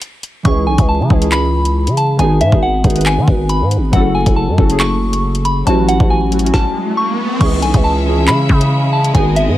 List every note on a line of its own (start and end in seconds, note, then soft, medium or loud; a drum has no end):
0.02 closed hi-hat medium
0.23 closed hi-hat medium
0.43 0.68 C#2 loud
0.43 1.04 E3 loud
0.43 1.05 G#3 medium
0.43 1.05 C#4 medium
0.43 1.06 E4 medium
0.43 0.64 C#6 medium
0.43 kick loud
0.43 closed hi-hat medium
0.47 1.06 G#4 loud
0.67 0.78 B1 loud
0.67 0.85 G#5 medium
0.78 1.02 C#2 loud
0.78 kick medium
0.78 closed hi-hat medium
0.89 1.29 A5 medium
1.00 1.10 C#3 loud
1.08 1.88 C#2 loud
1.08 1.19 E3 medium
1.08 1.20 G#3 medium
1.08 1.21 C#4 medium
1.08 1.21 E4 medium
1.08 1.22 G#4 medium
1.08 kick loud
1.20 2.01 E3 medium
1.20 2.01 G#3 medium
1.20 2.02 C#4 medium
1.20 2.02 E4 medium
1.20 2.03 G#4 medium
1.20 closed hi-hat medium
1.32 1.93 B5 loud
1.32 clap loud
1.32 closed hi-hat medium
1.65 closed hi-hat medium
1.87 2.17 C#3 loud
1.87 closed hi-hat medium
1.97 2.16 A5 medium
1.97 closed hi-hat medium
2.17 2.42 G#1 loud
2.17 2.48 D#3 loud
2.17 2.49 G#3 medium
2.17 2.49 B3 medium
2.17 2.50 D#4 medium
2.17 2.50 G#4 loud
2.17 2.38 G#5 medium
2.17 closed hi-hat medium
2.41 2.52 G#2 loud
2.41 2.59 E5 medium
2.41 closed hi-hat medium
2.50 2.83 G#1 loud
2.50 2.81 D#3 medium
2.50 2.81 G#3 medium
2.50 2.82 B3 medium
2.50 2.82 D#4 medium
2.50 2.83 G#4 medium
2.50 kick medium
2.62 3.03 F#5 medium
2.82 3.19 G#1 loud
2.82 2.92 D#3 medium
2.82 2.93 G#3 medium
2.82 2.94 B3 medium
2.82 2.95 D#4 medium
2.82 2.96 G#4 medium
2.82 kick loud
2.82 closed hi-hat medium
2.90 3.74 D#3 medium
2.90 closed hi-hat medium
2.94 3.75 G#3 medium
2.94 3.75 B3 medium
2.94 3.76 D#4 medium
2.94 3.76 B4 medium
2.94 closed hi-hat medium
3.01 closed hi-hat medium
3.06 3.47 G#5 medium
3.06 clap loud
3.06 closed hi-hat medium
3.17 3.27 D#3 loud
3.28 3.62 G#1 loud
3.28 kick medium
3.49 3.68 B5 medium
3.49 closed hi-hat medium
3.61 3.78 G#2 loud
3.71 closed hi-hat medium
3.77 3.92 G#1 loud
3.91 4.25 F#1 loud
3.91 4.52 F#3 loud
3.91 4.53 A3 medium
3.91 4.53 C#4 medium
3.91 4.54 F#4 medium
3.91 4.11 F#5 medium
3.91 kick loud
3.91 closed hi-hat medium
3.95 4.54 A4 loud
4.15 4.33 G#5 medium
4.26 4.49 F#1 loud
4.26 kick loud
4.26 closed hi-hat medium
4.36 4.77 A5 medium
4.48 4.58 F#2 loud
4.56 5.63 F#1 loud
4.56 4.66 F#3 medium
4.56 4.67 A3 medium
4.56 4.68 C#4 medium
4.56 4.69 F#4 medium
4.56 kick loud
4.60 4.70 A4 medium
4.68 5.48 F#3 medium
4.68 5.49 A3 medium
4.68 5.49 C#4 medium
4.68 5.50 F#4 medium
4.68 5.50 G#4 medium
4.68 closed hi-hat medium
4.80 5.41 C#6 medium
4.80 clap loud
4.80 closed hi-hat medium
5.13 closed hi-hat medium
5.35 closed hi-hat medium
5.45 5.63 B5 medium
5.45 closed hi-hat medium
5.65 5.99 A1 loud
5.65 5.97 F#3 loud
5.65 5.97 A3 medium
5.65 5.98 C#4 medium
5.65 5.98 E4 medium
5.65 5.99 F#4 loud
5.65 5.85 A5 medium
5.65 closed hi-hat medium
5.65 riser medium
5.88 6.07 F#5 medium
5.88 closed hi-hat medium
5.98 6.52 A1 loud
5.98 6.29 F#3 medium
5.98 6.29 A3 medium
5.98 6.30 C#4 medium
5.98 6.30 E4 medium
5.98 6.31 F#4 medium
5.98 kick medium
6.10 6.51 G#5 medium
6.30 6.41 F#3 medium
6.30 6.42 A3 medium
6.30 6.43 C#4 medium
6.30 6.43 E4 medium
6.30 6.44 F#4 medium
6.30 closed hi-hat medium
6.39 7.22 F#3 medium
6.39 7.23 A3 medium
6.39 closed hi-hat medium
6.44 7.23 C#4 medium
6.44 7.24 E4 medium
6.44 7.24 F#4 medium
6.44 closed hi-hat medium
6.54 6.95 A5 medium
6.54 kick loud
6.54 snare medium
6.97 7.16 C#6 medium
7.39 7.64 C#2 loud
7.39 8.00 E3 medium
7.39 8.01 G#3 medium
7.39 9.58 G#3 medium
7.39 9.13 C#4 medium
7.39 8.01 C#4 medium
7.39 8.02 E4 medium
7.39 8.02 G#4 loud
7.39 9.13 E5 medium
7.39 7.59 C#6 medium
7.39 kick loud
7.39 closed hi-hat medium
7.39 crash loud
7.62 7.73 B1 loud
7.62 7.81 G#5 medium
7.62 closed hi-hat medium
7.74 8.29 C#2 loud
7.74 kick loud
7.74 closed hi-hat medium
7.84 8.25 A5 medium
8.04 8.15 E3 medium
8.04 8.16 G#3 medium
8.04 8.17 C#4 medium
8.04 8.17 E4 medium
8.04 8.18 G#4 medium
8.16 8.96 E3 medium
8.16 8.97 G#3 medium
8.16 8.97 C#4 medium
8.16 8.98 E4 medium
8.20 8.98 G#4 medium
8.28 8.48 C#3 medium
8.28 8.89 B5 loud
8.28 clap loud
8.28 closed hi-hat medium
8.49 9.12 C#3 loud
8.49 kick loud
8.61 closed hi-hat medium
8.93 9.11 A5 medium
9.04 closed hi-hat medium
9.13 9.49 G#1 loud
9.13 9.44 D#3 loud
9.13 9.45 G#3 medium
9.13 9.45 B3 medium
9.13 9.58 B3 medium
9.13 9.46 D#4 medium
9.13 9.46 G#4 loud
9.13 9.58 D#5 medium
9.13 9.33 G#5 medium
9.13 kick loud
9.13 closed hi-hat medium
9.36 9.55 E5 medium
9.36 closed hi-hat medium
9.46 9.58 G#2 loud
9.46 9.58 D#3 medium
9.46 9.58 G#3 medium
9.46 9.58 B3 medium
9.46 9.58 D#4 medium
9.46 9.58 G#4 medium